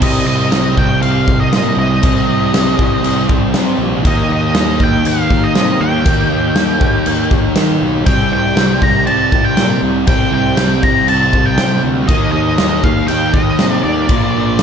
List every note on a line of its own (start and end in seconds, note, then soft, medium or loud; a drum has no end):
0.00 0.24 C2 medium
0.00 2.00 C3 medium
0.00 2.04 G3 medium
0.00 2.02 C4 medium
0.00 12.04 G4 medium
0.00 4.01 C5 medium
0.00 12.05 D#5 medium
0.00 0.26 D#5 medium
0.00 12.04 G5 medium
0.00 kick loud
0.00 crash loud
0.00 crash medium
0.27 0.50 C2 medium
0.27 0.74 D#5 medium
0.52 0.75 C2 medium
0.52 snare loud
0.52 crash medium
0.77 1.00 C2 medium
0.77 1.01 G5 loud
0.77 kick medium
1.02 1.25 C2 loud
1.02 1.37 F5 loud
1.02 crash medium
1.27 1.50 C2 medium
1.27 kick medium
1.40 1.75 D#5 medium
1.53 1.76 A#2 medium
1.53 snare loud
1.53 crash medium
1.77 2.00 C2 medium
1.77 3.26 D#5 medium
2.02 2.26 C2 medium
2.02 4.02 C3 medium
2.02 4.05 G3 medium
2.02 4.04 C4 loud
2.02 kick loud
2.02 crash medium
2.28 2.51 C2 medium
2.54 2.76 C2 loud
2.54 snare loud
2.54 crash medium
2.79 3.02 C2 medium
2.79 kick medium
3.03 3.26 C2 loud
3.03 crash medium
3.29 3.52 C2 medium
3.29 kick medium
3.54 3.76 C3 medium
3.54 snare loud
3.54 crash medium
3.79 4.02 A#1 medium
4.03 4.27 D#2 medium
4.03 6.04 D#3 medium
4.03 6.06 A#3 medium
4.03 6.08 D#4 medium
4.03 8.03 A#4 medium
4.03 4.31 D#5 loud
4.03 kick loud
4.03 crash medium
4.29 4.52 D#2 medium
4.29 4.83 D#5 medium
4.55 4.78 D#2 loud
4.55 snare loud
4.55 crash medium
4.80 5.03 D#2 medium
4.80 5.07 G5 loud
4.80 kick medium
5.05 5.28 D#2 loud
5.05 5.45 F5 loud
5.05 crash medium
5.30 5.53 D#2 medium
5.30 kick medium
5.44 5.82 D#5 medium
5.55 5.78 C3 medium
5.55 snare loud
5.55 crash medium
5.81 6.03 D#2 medium
5.81 7.27 G5 medium
6.05 6.28 D#2 medium
6.05 8.05 D#3 medium
6.05 8.07 A#3 medium
6.05 8.08 D#4 loud
6.05 kick loud
6.05 crash medium
6.30 6.53 D#2 medium
6.56 6.78 D#2 loud
6.56 snare loud
6.56 crash medium
6.81 7.04 D#2 medium
6.81 kick medium
7.06 7.29 D#2 loud
7.06 crash medium
7.31 7.54 D#2 medium
7.31 kick medium
7.55 7.79 D#3 medium
7.55 snare loud
7.55 crash medium
7.82 8.04 B1 medium
8.05 8.29 C2 medium
8.05 10.05 C3 medium
8.05 10.08 G3 medium
8.05 10.07 C4 medium
8.05 12.05 C5 medium
8.05 8.32 G5 medium
8.05 kick loud
8.05 crash medium
8.32 8.54 C2 medium
8.32 8.84 G5 loud
8.56 8.79 C2 loud
8.56 snare loud
8.56 crash medium
8.82 9.05 C2 medium
8.82 9.06 A#5 loud
8.82 kick medium
9.07 9.30 C2 loud
9.07 9.46 A5 loud
9.07 crash medium
9.32 9.55 C2 medium
9.32 kick medium
9.45 9.80 G5 medium
9.57 9.80 A#2 medium
9.57 snare loud
9.57 crash medium
9.82 10.05 C2 loud
10.07 10.30 C2 loud
10.07 12.07 C3 medium
10.07 12.07 G3 medium
10.07 12.08 C4 medium
10.07 10.31 G5 loud
10.07 kick loud
10.07 crash medium
10.32 10.55 C2 medium
10.32 10.85 G5 medium
10.57 10.80 C2 loud
10.57 snare loud
10.57 crash medium
10.83 11.06 C2 medium
10.83 11.08 A#5 loud
10.83 kick medium
11.08 11.30 C2 loud
11.08 11.47 A5 loud
11.08 crash medium
11.33 11.56 C2 medium
11.33 kick medium
11.46 11.81 G5 medium
11.58 11.81 C3 medium
11.58 snare loud
11.58 crash medium
11.84 12.06 D2 medium
12.07 12.31 D#2 medium
12.07 14.07 D#3 medium
12.07 14.08 A#3 medium
12.07 14.09 D#4 medium
12.07 14.08 G4 medium
12.07 14.07 A#4 medium
12.07 12.31 D#5 loud
12.07 14.08 D#5 medium
12.07 14.63 A#5 medium
12.07 kick loud
12.07 crash medium
12.32 12.56 D#2 medium
12.32 12.84 D#5 medium
12.58 12.82 D#2 loud
12.58 snare loud
12.58 crash medium
12.84 13.06 D#2 medium
12.84 13.07 F5 medium
12.84 kick medium
13.08 13.32 D#2 loud
13.08 13.34 G5 loud
13.08 crash medium
13.33 13.56 D#2 medium
13.33 13.71 D#5 loud
13.33 kick medium
13.59 13.82 C3 medium
13.59 snare loud
13.59 crash medium
13.71 13.83 D5 loud
13.83 14.07 D#2 medium
13.83 14.63 D5 medium
14.07 14.32 A#1 loud
14.07 14.63 A#2 medium
14.07 14.63 F3 loud
14.07 14.63 A#3 medium
14.07 14.63 F4 medium
14.07 14.63 A#4 medium
14.07 14.63 D5 medium
14.07 kick loud
14.07 crash medium
14.35 14.57 A#1 medium
14.59 snare loud
14.59 crash medium